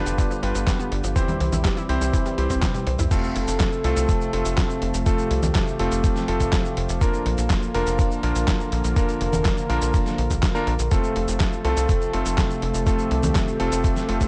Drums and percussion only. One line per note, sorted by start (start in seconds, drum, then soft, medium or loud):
0.06 closed hi-hat medium
0.06 cabasa medium
0.18 kick loud
0.18 closed hi-hat medium
0.18 cabasa soft
0.31 cabasa soft
0.43 closed hi-hat medium
0.55 closed hi-hat medium
0.55 cabasa medium
0.67 kick loud
0.67 snare loud
0.67 clap loud
0.67 closed hi-hat medium
0.67 cabasa soft
0.80 cabasa soft
0.92 closed hi-hat medium
1.04 closed hi-hat medium
1.04 cabasa medium
1.16 kick loud
1.16 closed hi-hat medium
1.16 cabasa medium
1.28 closed hi-hat soft
1.28 high conga medium
1.28 cabasa soft
1.40 closed hi-hat medium
1.53 closed hi-hat medium
1.53 high conga medium
1.53 cabasa medium
1.65 kick loud
1.65 snare loud
1.65 clap loud
1.65 closed hi-hat medium
1.65 cabasa medium
1.77 closed hi-hat soft
1.77 cabasa soft
1.89 closed hi-hat medium
2.01 closed hi-hat medium
2.01 cabasa medium
2.14 kick loud
2.14 closed hi-hat medium
2.14 cabasa medium
2.26 closed hi-hat soft
2.26 cabasa soft
2.38 closed hi-hat medium
2.50 kick medium
2.50 closed hi-hat medium
2.50 cabasa medium
2.62 kick loud
2.62 snare loud
2.62 clap loud
2.62 closed hi-hat medium
2.62 high tom medium
2.62 cabasa soft
2.75 closed hi-hat soft
2.75 high tom medium
2.75 cabasa soft
2.87 closed hi-hat medium
2.99 closed hi-hat medium
2.99 mid tom medium
2.99 cabasa medium
3.11 kick loud
3.11 closed hi-hat medium
3.11 crash loud
3.11 cabasa medium
3.23 cabasa soft
3.36 closed hi-hat medium
3.48 closed hi-hat medium
3.48 cabasa medium
3.60 kick loud
3.60 snare loud
3.60 clap loud
3.60 closed hi-hat medium
3.60 cabasa soft
3.72 cabasa soft
3.84 closed hi-hat medium
3.97 closed hi-hat medium
3.97 cabasa medium
4.09 kick loud
4.09 closed hi-hat medium
4.09 cabasa soft
4.21 cabasa soft
4.33 closed hi-hat medium
4.45 closed hi-hat medium
4.45 cabasa medium
4.57 kick loud
4.57 snare loud
4.57 clap loud
4.57 closed hi-hat medium
4.57 cabasa soft
4.70 cabasa soft
4.82 closed hi-hat medium
4.94 closed hi-hat medium
4.94 cabasa medium
5.06 kick loud
5.06 closed hi-hat medium
5.06 cabasa soft
5.18 cabasa soft
5.31 closed hi-hat medium
5.43 closed hi-hat medium
5.43 high conga medium
5.43 cabasa medium
5.55 kick loud
5.55 snare loud
5.55 clap loud
5.55 closed hi-hat medium
5.55 cabasa soft
5.67 cabasa soft
5.79 closed hi-hat medium
5.92 closed hi-hat medium
5.92 cabasa medium
6.04 kick loud
6.04 closed hi-hat medium
6.04 cabasa soft
6.16 snare soft
6.16 cabasa soft
6.28 closed hi-hat medium
6.40 kick medium
6.40 closed hi-hat medium
6.40 cabasa medium
6.53 kick loud
6.53 snare loud
6.53 clap loud
6.53 closed hi-hat medium
6.53 cabasa soft
6.65 cabasa soft
6.77 closed hi-hat medium
6.89 closed hi-hat medium
6.89 cabasa medium
7.01 kick loud
7.01 closed hi-hat medium
7.01 cabasa soft
7.14 cabasa soft
7.26 closed hi-hat medium
7.38 closed hi-hat medium
7.38 cabasa medium
7.50 kick loud
7.50 snare loud
7.50 clap loud
7.50 closed hi-hat medium
7.50 cabasa soft
7.62 cabasa soft
7.74 closed hi-hat medium
7.87 closed hi-hat medium
7.87 cabasa medium
7.99 kick loud
7.99 closed hi-hat medium
7.99 cabasa soft
8.11 cabasa soft
8.23 closed hi-hat medium
8.35 closed hi-hat medium
8.35 cabasa medium
8.48 kick loud
8.48 snare loud
8.48 clap loud
8.48 closed hi-hat medium
8.48 cabasa soft
8.60 cabasa soft
8.72 closed hi-hat medium
8.84 closed hi-hat medium
8.84 cabasa medium
8.96 kick loud
8.96 closed hi-hat medium
8.96 cabasa soft
9.09 closed hi-hat soft
9.09 cabasa soft
9.21 closed hi-hat medium
9.33 closed hi-hat medium
9.33 high conga medium
9.33 cabasa medium
9.45 kick loud
9.45 snare loud
9.45 clap loud
9.45 closed hi-hat medium
9.45 cabasa soft
9.57 cabasa soft
9.70 closed hi-hat medium
9.82 closed hi-hat medium
9.82 cabasa medium
9.94 kick loud
9.94 closed hi-hat medium
9.94 cabasa soft
10.06 snare soft
10.06 cabasa soft
10.18 closed hi-hat medium
10.31 kick medium
10.31 closed hi-hat medium
10.31 cabasa medium
10.43 kick loud
10.43 snare loud
10.43 clap loud
10.43 closed hi-hat medium
10.43 cabasa soft
10.55 cabasa soft
10.67 closed hi-hat medium
10.79 closed hi-hat medium
10.79 cabasa medium
10.91 kick loud
10.91 closed hi-hat medium
10.91 cabasa soft
11.04 cabasa soft
11.16 closed hi-hat medium
11.28 closed hi-hat medium
11.28 cabasa medium
11.40 kick loud
11.40 snare loud
11.40 clap loud
11.40 closed hi-hat medium
11.40 cabasa medium
11.52 cabasa soft
11.65 closed hi-hat medium
11.77 closed hi-hat medium
11.77 cabasa medium
11.89 kick loud
11.89 closed hi-hat medium
11.89 cabasa soft
12.01 cabasa soft
12.13 closed hi-hat medium
12.26 closed hi-hat medium
12.26 cabasa medium
12.38 kick loud
12.38 snare loud
12.38 clap medium
12.38 closed hi-hat medium
12.38 cabasa medium
12.50 cabasa soft
12.62 closed hi-hat medium
12.74 closed hi-hat medium
12.74 cabasa medium
12.87 kick loud
12.87 closed hi-hat medium
12.87 cabasa medium
12.99 cabasa soft
13.11 closed hi-hat medium
13.23 closed hi-hat medium
13.23 high conga medium
13.23 cabasa medium
13.35 kick loud
13.35 snare loud
13.35 clap loud
13.35 closed hi-hat medium
13.35 cabasa medium
13.48 cabasa soft
13.60 closed hi-hat medium
13.72 closed hi-hat medium
13.72 cabasa medium
13.84 kick loud
13.84 closed hi-hat medium
13.84 cabasa medium
13.96 snare soft
13.96 cabasa soft
14.09 closed hi-hat medium
14.21 kick medium
14.21 closed hi-hat medium
14.21 cabasa medium